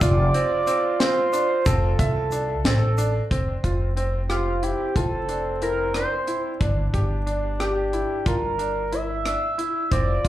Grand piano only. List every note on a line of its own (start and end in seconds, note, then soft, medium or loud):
0.01 0.24 F4 medium
0.34 0.57 C4 medium
0.67 0.90 C4 medium
1.00 1.23 C4 medium
1.33 1.56 D4 medium
1.66 1.89 C4 medium
1.99 2.22 E5 medium
2.32 2.55 D4 medium
2.65 2.88 C4 medium
2.98 3.21 D4 medium
3.31 3.54 C4 medium
3.64 3.86 F4 medium
3.97 4.19 C4 medium
4.29 4.52 G4 medium
4.63 4.86 E4 medium
4.96 5.19 F4 medium
5.29 5.52 D4 medium
5.62 5.85 E4 medium
5.95 6.18 D4 medium
6.28 6.51 E4 medium
6.61 6.84 D4 medium
6.94 7.17 G4 medium
7.27 7.50 D4 medium
7.60 7.83 G4 medium
7.93 8.16 E4 medium
8.26 8.49 F4 medium
8.59 8.82 D4 medium
8.92 9.15 E4 medium
9.26 9.48 D4 medium
9.58 9.81 E4 medium
9.91 10.14 C4 medium
10.24 10.28 F4 medium